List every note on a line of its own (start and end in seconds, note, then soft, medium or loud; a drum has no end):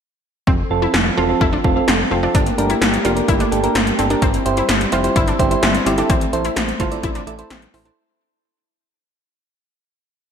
0.47 0.64 F1 loud
0.47 2.33 F3 medium
0.47 0.67 C4 medium
0.47 2.33 C4 medium
0.47 2.33 A4 medium
0.47 kick loud
0.71 0.87 F1 loud
0.71 0.85 C4 medium
0.71 0.85 F4 medium
0.71 0.85 A4 medium
0.82 1.02 E4 medium
0.94 1.10 F1 loud
0.94 snare loud
1.17 1.34 E1 loud
1.17 1.24 C4 medium
1.17 1.24 F4 medium
1.17 1.37 F4 medium
1.17 1.24 A4 medium
1.29 1.43 C4 medium
1.29 1.43 F4 medium
1.29 1.43 A4 medium
1.41 1.57 F1 loud
1.41 1.51 E4 medium
1.41 kick medium
1.53 1.72 D4 medium
1.64 1.81 F1 loud
1.64 1.71 C4 medium
1.64 1.71 F4 medium
1.64 1.71 A4 medium
1.64 kick medium
1.76 1.90 C4 medium
1.76 1.90 F4 medium
1.76 1.90 A4 medium
1.88 2.04 F1 loud
1.88 2.07 C4 medium
1.88 snare loud
2.11 2.28 F1 medium
2.11 2.18 C4 medium
2.11 2.21 C4 medium
2.11 2.18 F4 medium
2.11 2.18 A4 medium
2.23 2.35 C4 medium
2.23 2.33 D4 medium
2.23 2.35 F4 medium
2.23 2.35 A4 medium
2.35 2.51 G1 loud
2.35 4.20 A3 medium
2.35 4.20 A#3 medium
2.35 2.54 D4 medium
2.35 4.20 G4 medium
2.35 kick loud
2.35 closed hi-hat medium
2.46 closed hi-hat medium
2.58 2.75 G1 loud
2.58 2.72 D4 medium
2.58 2.72 G4 medium
2.58 2.72 A#4 medium
2.58 closed hi-hat medium
2.70 2.89 E4 medium
2.70 closed hi-hat medium
2.82 2.98 G1 loud
2.82 snare loud
2.82 closed hi-hat medium
2.94 closed hi-hat soft
3.05 3.21 F1 medium
3.05 3.12 D4 medium
3.05 3.25 F4 medium
3.05 3.12 G4 medium
3.05 3.12 A#4 medium
3.05 closed hi-hat medium
3.16 3.30 D4 medium
3.16 3.30 G4 medium
3.16 3.30 A#4 medium
3.16 closed hi-hat medium
3.28 3.45 G1 loud
3.28 3.38 E4 medium
3.28 kick medium
3.28 closed hi-hat medium
3.40 3.60 D4 medium
3.40 closed hi-hat soft
3.52 3.68 G1 loud
3.52 3.59 D4 medium
3.52 3.59 G4 medium
3.52 3.59 A4 medium
3.52 closed hi-hat medium
3.63 3.77 D4 medium
3.63 3.77 G4 medium
3.63 3.77 A#4 medium
3.63 closed hi-hat medium
3.75 3.92 G1 loud
3.75 3.95 C4 medium
3.75 snare loud
3.75 closed hi-hat medium
3.87 closed hi-hat medium
3.99 4.15 G1 loud
3.99 4.09 C4 medium
3.99 4.06 D4 medium
3.99 4.06 G4 medium
3.99 4.06 A4 medium
3.99 closed hi-hat medium
4.10 4.22 D4 medium
4.10 4.20 D4 medium
4.10 4.22 G4 medium
4.10 4.22 A#4 medium
4.10 closed hi-hat medium
4.22 4.39 G1 loud
4.22 6.08 G3 medium
4.22 7.93 C4 medium
4.22 4.42 C4 loud
4.22 7.94 E4 medium
4.22 kick loud
4.22 closed hi-hat medium
4.34 closed hi-hat medium
4.46 4.62 G1 loud
4.46 4.60 E4 medium
4.46 4.60 G4 medium
4.46 4.60 C5 medium
4.46 closed hi-hat medium
4.57 4.77 E4 medium
4.57 closed hi-hat medium
4.69 4.86 G1 loud
4.69 snare loud
4.69 closed hi-hat medium
4.81 closed hi-hat medium
4.92 5.09 F1 loud
4.92 4.99 E4 medium
4.92 5.12 F4 medium
4.92 4.99 G4 medium
4.92 4.99 C5 medium
4.92 closed hi-hat medium
5.04 5.18 E4 medium
5.04 5.18 G4 medium
5.04 5.18 C5 medium
5.04 closed hi-hat medium
5.16 5.32 G1 loud
5.16 5.26 E4 medium
5.16 kick medium
5.16 closed hi-hat medium
5.28 5.47 D4 medium
5.28 closed hi-hat soft
5.39 5.56 G1 loud
5.39 5.46 E4 medium
5.39 5.46 G4 medium
5.39 5.46 C5 medium
5.39 kick medium
5.39 closed hi-hat medium
5.51 5.65 E4 medium
5.51 5.65 G4 medium
5.51 5.65 C5 medium
5.51 closed hi-hat medium
5.63 5.79 G1 loud
5.63 5.83 C4 medium
5.63 snare loud
5.63 closed hi-hat medium
5.75 closed hi-hat medium
5.86 6.03 G1 loud
5.86 5.96 C4 medium
5.86 5.93 E4 medium
5.86 5.93 G4 medium
5.86 5.93 D5 medium
5.86 closed hi-hat medium
5.98 6.08 D4 medium
5.98 6.10 E4 medium
5.98 6.10 G4 medium
5.98 6.10 A4 medium
5.98 closed hi-hat medium
6.10 6.26 A1 loud
6.10 7.95 A3 medium
6.10 6.29 C4 medium
6.10 kick loud
6.10 closed hi-hat medium
6.21 closed hi-hat medium
6.33 6.50 A1 loud
6.33 6.47 E4 medium
6.33 6.47 A4 medium
6.33 6.47 C5 medium
6.33 closed hi-hat medium
6.45 6.65 E4 medium
6.45 closed hi-hat medium
6.56 6.73 A1 loud
6.56 snare loud
6.56 closed hi-hat medium
6.69 closed hi-hat soft
6.80 6.96 G1 loud
6.80 6.87 E4 medium
6.80 7.00 F4 medium
6.80 6.87 A4 medium
6.80 6.87 C5 medium
6.80 kick loud
6.80 closed hi-hat medium
6.92 7.06 E4 medium
6.92 7.06 A4 medium
6.92 7.06 D5 medium
6.92 closed hi-hat medium
7.03 7.20 A1 loud
7.03 7.13 E4 medium
7.03 kick medium
7.03 closed hi-hat medium
7.15 7.35 D4 medium
7.15 closed hi-hat soft
7.27 7.43 A1 loud
7.27 7.34 E4 medium
7.27 7.34 A4 medium
7.27 7.34 D5 medium
7.27 closed hi-hat medium
7.39 7.53 E4 medium
7.39 7.53 A4 medium
7.39 7.53 C5 medium
7.39 closed hi-hat medium
7.50 7.67 A1 loud
7.50 7.70 C4 medium
7.50 snare loud
7.50 closed hi-hat medium
7.62 closed hi-hat medium
7.74 7.90 A1 loud
7.74 7.84 C4 medium
7.74 7.81 E4 medium
7.74 7.81 A4 medium
7.74 7.81 C5 medium
7.74 open hi-hat medium
7.85 7.95 D4 medium
7.85 7.97 E4 medium
7.85 7.97 A4 medium
7.85 7.97 C5 medium
7.85 closed hi-hat medium